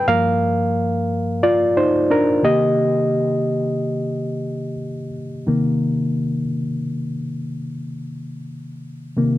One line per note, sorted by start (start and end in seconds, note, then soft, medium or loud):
0.07 2.38 G2 medium
0.07 2.39 F3 medium
0.07 2.39 A#3 medium
0.07 1.38 A#4 medium
0.07 1.45 F5 loud
1.43 1.73 F4 medium
1.43 1.76 D5 medium
1.77 1.91 D#4 medium
1.77 1.92 C5 medium
2.10 2.41 D4 medium
2.10 2.44 A#4 medium
2.43 5.08 C3 medium
2.43 5.08 D#3 medium
2.43 5.08 A#3 medium
2.43 4.75 G4 medium
2.43 4.75 D#5 loud
5.47 6.43 C3 medium
5.47 6.43 D#3 medium
5.47 6.43 A#3 medium
9.17 9.38 C3 medium
9.17 9.38 D#3 soft
9.17 9.38 A#3 medium